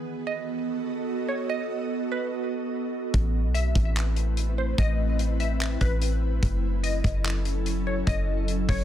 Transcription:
Already playing: B3 F#4 A4 D#5
0.27 D#5
1.29 C#5
1.50 D#5
2.12 B4
3.14 A1 A3 C4 E4 B4, kick, closed hi-hat
3.45 B1
3.54 E5, closed hi-hat
3.75 A1, kick, closed hi-hat
3.96 clap, closed hi-hat
4.16 closed hi-hat
4.37 closed hi-hat
4.58 C5
4.78 A1 D#5, kick, closed hi-hat
5.19 closed hi-hat
5.40 E5, closed hi-hat
5.61 clap, closed hi-hat
5.81 A1 B4, kick, closed hi-hat
6.02 closed hi-hat
6.43 F#1 F#3 C#4 A4, kick, closed hi-hat
6.84 D#5, closed hi-hat
7.04 F#1, kick, closed hi-hat
7.25 clap, closed hi-hat
7.45 closed hi-hat
7.66 closed hi-hat
7.87 C#5
8.07 F#1 D#5, kick, closed hi-hat
8.48 closed hi-hat
8.69 F#1 C#5, kick, open hi-hat

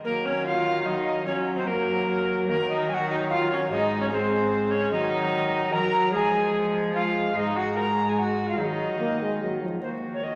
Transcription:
0.04 D#3 F#3 A#3 A#4
0.25 C#4 C#5
0.45 F4 F5
0.85 F#3 D#4 D#5
1.25 F#3 C#4 C#5
1.56 C4 C5
1.67 F#3 A#3 A#4
2.48 D#3 F#3 A#3 A#4
2.69 D#4 D#5
2.88 F#3 F#4 G#5
2.94 F#5
3.10 D#4 D#5
3.30 F4 F5
3.50 C#4 C#5
3.71 G#2 G#3 D#4 D#5
4.01 C#4 C#5
4.11 G#3 C4 C5
4.71 C#4 C#5
4.92 D#3 F#3 D#4 D#5
5.72 F#3 A#4 A#5
6.12 F3 G#3 G#4 A#5
6.17 G#5
6.94 G#3 F4 F5
7.36 G#2 G#3 D#4 D#5
7.56 F#4 F#5
7.76 A#4 A#5
8.08 G#4 G#5
8.19 F#4 F#5
8.48 F4 F5
8.58 D#3 F#3 D#4 D#5
9.00 A#3
9.22 G#3
9.42 F#3
9.63 F3
9.82 D#3 A#3 F#4 C5
10.14 C#5
10.24 A#3 F#4 D#5

